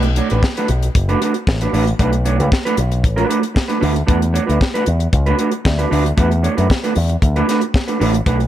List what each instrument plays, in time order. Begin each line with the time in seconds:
Already playing: picked electric bass B1
0.03 muted clean electric guitar stroke, closed hi-hat
0.16 clean electric guitar A3 D4 F#4 C#5, closed hi-hat
0.30 picked electric bass A1, clean electric guitar A3 D4 F#4 B4, closed hi-hat
0.43 muted clean electric guitar stroke, kick, snare
0.57 clean electric guitar A3 D4 F#4 B4, closed hi-hat
0.68 picked electric bass B1, muted clean electric guitar stroke, closed hi-hat
0.82 muted clean electric guitar stroke, closed hi-hat
0.95 picked electric bass F#1, muted clean electric guitar stroke, kick, closed hi-hat
1.09 clean electric guitar A3 D4 F#4 B4, closed hi-hat
1.21 clean electric guitar A3 D4 F#4 B4, closed hi-hat
1.34 muted clean electric guitar stroke, closed hi-hat
1.47 picked electric bass A1, muted clean electric guitar stroke, kick, snare
1.61 clean electric guitar A3 D4 F#4 B4, closed hi-hat
1.73 picked electric bass A1, clean electric guitar A3 D4 F#4 B4, open hi-hat
1.87 muted clean electric guitar stroke, closed hi-hat
1.99 picked electric bass B1, clean electric guitar A3 D4 F#4 B4, kick, closed hi-hat
2.13 muted clean electric guitar stroke, closed hi-hat
2.25 clean electric guitar A3 D4 F#4 C#5, closed hi-hat
2.40 picked electric bass C#2, clean electric guitar A3 D4 F#4 B4, closed hi-hat
2.51 muted clean electric guitar stroke, kick, snare
2.65 clean electric guitar A3 D4 F#4 B4, closed hi-hat
2.77 picked electric bass B1, muted clean electric guitar stroke, closed hi-hat
2.92 muted clean electric guitar stroke, closed hi-hat
3.03 picked electric bass A1, muted clean electric guitar stroke, kick, closed hi-hat
3.16 clean electric guitar A3 D4 F#4 B4, closed hi-hat
3.29 clean electric guitar A3 D4 F#4 B4, closed hi-hat
3.41 muted clean electric guitar stroke, closed hi-hat
3.54 muted clean electric guitar stroke, kick, snare
3.68 clean electric guitar A3 D4 F#4 B4, closed hi-hat
3.81 picked electric bass D2, clean electric guitar A3 D4 F#4 B4, open hi-hat
3.95 muted clean electric guitar stroke, closed hi-hat
4.06 picked electric bass E2, clean electric guitar A3 D4 F#4 B4, kick, closed hi-hat
4.20 muted clean electric guitar stroke, closed hi-hat
4.33 clean electric guitar A3 D4 F#4 C#5, closed hi-hat
4.47 picked electric bass D2, clean electric guitar A3 D4 F#4 B4, closed hi-hat
4.60 muted clean electric guitar stroke, kick, snare
4.74 clean electric guitar A3 D4 F#4 B4, closed hi-hat
4.86 picked electric bass E2, muted clean electric guitar stroke, closed hi-hat
4.99 muted clean electric guitar stroke, closed hi-hat
5.13 picked electric bass C#2, muted clean electric guitar stroke, kick, closed hi-hat
5.26 clean electric guitar A3 D4 F#4 B4, closed hi-hat
5.38 clean electric guitar A3 D4 F#4 B4, closed hi-hat
5.52 muted clean electric guitar stroke, closed hi-hat
5.64 picked electric bass D2, muted clean electric guitar stroke, kick, snare
5.78 clean electric guitar A3 D4 F#4 B4, closed hi-hat
5.90 picked electric bass D2, clean electric guitar A3 D4 F#4 B4, open hi-hat
6.06 muted clean electric guitar stroke, closed hi-hat
6.17 picked electric bass E2, clean electric guitar A3 D4 F#4 B4, kick, closed hi-hat
6.31 muted clean electric guitar stroke, closed hi-hat
6.43 clean electric guitar A3 D4 F#4 C#5, closed hi-hat
6.57 picked electric bass F#2, clean electric guitar A3 D4 F#4 B4, closed hi-hat
6.70 kick, snare
6.83 clean electric guitar A3 D4 F#4 B4, closed hi-hat
6.95 picked electric bass E2, muted clean electric guitar stroke, open hi-hat
7.09 muted clean electric guitar stroke, closed hi-hat
7.22 picked electric bass D2, muted clean electric guitar stroke, kick, closed hi-hat
7.36 clean electric guitar A3 D4 F#4 B4, closed hi-hat
7.48 clean electric guitar A3 D4 F#4 B4, snare, closed hi-hat
7.61 muted clean electric guitar stroke, closed hi-hat
7.74 muted clean electric guitar stroke, kick, snare
7.88 clean electric guitar A3 D4 F#4 B4, closed hi-hat
8.00 picked electric bass A1, clean electric guitar A3 D4 F#4 B4, open hi-hat
8.14 muted clean electric guitar stroke, closed hi-hat
8.26 picked electric bass B1, clean electric guitar A3 D4 F#4 B4, kick, closed hi-hat
8.40 muted clean electric guitar stroke, closed hi-hat